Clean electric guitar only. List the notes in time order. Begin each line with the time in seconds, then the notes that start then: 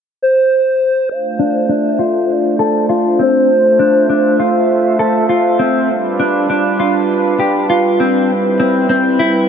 1.39 D4
1.69 D4
1.99 F4
2.59 A4
2.89 F4
3.19 C4
3.79 D4
4.09 D4
4.40 F4
4.99 A4
5.29 F4
5.59 C4
6.20 D4
6.50 D4
6.80 F4
7.40 G4
7.70 F4
8.00 C4
8.60 C4
8.89 C4
9.19 E4